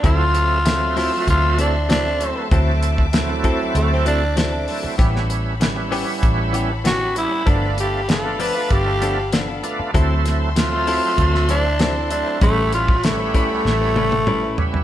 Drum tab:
HH |x-x-x-o-x-x-x-x-|x-x-x-x-x-x-x-o-|x-x-x-o-x-x-x-x-|x-x-x-o-x-x-x-x-|
SD |----o-o-----o---|----o-------o---|-o--o-------o---|----o-------o---|
T1 |----------------|----------------|----------------|----------------|
T2 |----------------|----------------|----------------|----------------|
FT |----------------|----------------|----------------|----------------|
BD |o-------o-------|o--o--o---------|o-------o-------|o-------o-------|

HH |x-x-x-o-x-x-x-x-|x-x-x-x---------|
SD |--o-o----o--o---|----o---o-------|
T1 |----------------|----------oo----|
T2 |----------------|------------o---|
FT |----------------|--------------oo|
BD |o-------o-------|o--o--o---------|